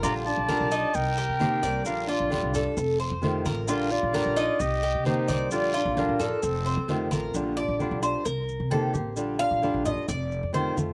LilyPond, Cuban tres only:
\new Staff \with { instrumentName = "Cuban tres" } { \time 4/4 \key bes \major \tempo 4 = 131 f'4 bes'8 ees'4 g'4 d''8~ | d''8 f'4 a'4 c''4 bes'8 | f'4 bes'8 ees'4 g'4 d''8~ | d''8 f'4 a'4 c''4 bes'8 |
r8 d''4 c''8 bes'4 a'8 r8 | r8 f''4 ees''8 d''4 c''8 r8 | }